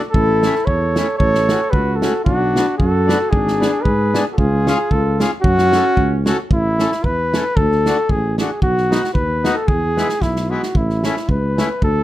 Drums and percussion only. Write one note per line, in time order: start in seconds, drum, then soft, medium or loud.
0.14 kick medium
0.43 snare medium
0.55 snare soft
0.67 kick soft
0.96 snare medium
1.20 kick medium
1.35 snare soft
1.49 snare medium
1.73 kick medium
2.02 snare medium
2.26 kick medium
2.56 snare medium
2.80 kick medium
3.09 snare medium
3.33 kick medium
3.48 snare soft
3.62 snare medium
3.85 kick medium
4.15 snare medium
4.38 kick medium
4.67 snare medium
4.91 kick medium
5.20 snare medium
5.44 kick medium
5.58 snare soft
5.72 snare medium
5.97 kick medium
6.26 snare medium
6.51 kick medium
6.79 snare medium
6.92 snare soft
7.04 kick soft
7.34 snare medium
7.57 kick medium
7.72 snare soft
7.86 snare medium
8.09 kick medium
8.38 snare medium
8.62 kick medium
8.77 snare soft
8.92 snare medium
9.04 snare soft
9.15 kick medium
9.45 snare medium
9.68 kick medium
9.97 snare medium
10.09 snare soft
10.22 kick soft
10.22 snare soft
10.36 snare soft
10.63 snare soft
10.75 kick medium
10.90 snare soft
11.04 snare medium
11.17 snare soft
11.29 kick medium
11.58 snare medium
11.82 kick medium